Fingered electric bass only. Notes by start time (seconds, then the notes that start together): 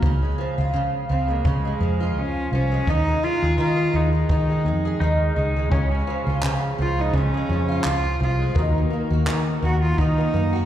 0.03 C#2
0.58 C#2
0.74 C#3
1.10 C#2
1.45 C#3
1.80 F2
2.16 C#2
2.52 C2
2.87 D#2
3.42 D#2
3.58 D#3
3.94 D#2
4.29 D#3
4.65 F2
5.00 D#2
5.37 C#2
5.72 C#2
6.27 C#2
6.43 C#3
6.79 C#2
7.14 C#3
7.49 F2
7.85 C#2
8.21 C2
8.56 D#2
9.11 D#2
9.27 D#3
9.63 D#2
9.98 D#3
10.34 F#2